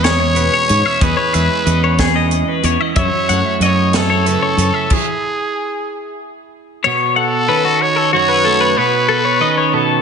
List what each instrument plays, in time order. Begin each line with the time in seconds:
Already playing: fretless electric bass E2, clean electric guitar E2 E3 G#3 C#4
0.04 clean electric guitar G#4 C#5, trumpet C#5, snare, closed hi-hat
0.20 clean electric guitar C#5
0.35 clean electric guitar B2 B4, closed hi-hat
0.54 clean electric guitar C#5
0.68 fretless electric bass G#2, clean electric guitar C#4, closed hi-hat
0.86 clean electric guitar E5
1.00 clean electric guitar E2 G#4 D#5, fretless electric bass E2, trumpet B4, kick, closed hi-hat
1.17 clean electric guitar C#5
1.34 fretless electric bass E2, clean electric guitar G#3 E5, closed hi-hat
1.66 fretless electric bass E2, clean electric guitar E3 C#4 D#5, closed hi-hat
1.84 clean electric guitar C#5
1.99 clean electric guitar G#4, kick, snare, closed hi-hat
2.16 clean electric guitar D#5
2.31 closed hi-hat
2.48 clean electric guitar B4
2.63 clean electric guitar E2 C#5, fretless electric bass E2, closed hi-hat
2.81 clean electric guitar D#5
2.95 clean electric guitar F#2 E4 E5, fretless electric bass F#2, trumpet C#5, kick, closed hi-hat
3.29 fretless electric bass F#2, clean electric guitar A3 F#5, closed hi-hat
3.46 clean electric guitar E5
3.60 fretless electric bass F#2, clean electric guitar F#3 C#4 D#5, closed hi-hat
3.64 trumpet C#5
3.93 clean electric guitar E4 C#5, trumpet A4, snare, closed hi-hat
4.10 clean electric guitar C#5
4.26 clean electric guitar C#3 B4, closed hi-hat
4.42 clean electric guitar C#5
4.57 fretless electric bass F#2, clean electric guitar C#4, closed hi-hat
4.74 clean electric guitar E5
4.90 trumpet G#4, kick, crash
6.84 clean electric guitar B2 C#5
7.16 trumpet A4, clean electric guitar F#5
7.48 clean electric guitar D#3 C#4 B4
7.65 clean electric guitar F#4
7.82 trumpet C#5
7.96 clean electric guitar A4
8.13 clean electric guitar F#2 F#4, trumpet C#5
8.29 clean electric guitar B4
8.45 clean electric guitar A3 A4
8.61 clean electric guitar B4
8.77 clean electric guitar B2 C#5, trumpet B4
9.09 clean electric guitar A4
9.25 clean electric guitar C#5
9.40 clean electric guitar D#3 C#4 D#5
9.58 clean electric guitar C#5
9.73 clean electric guitar B2 A4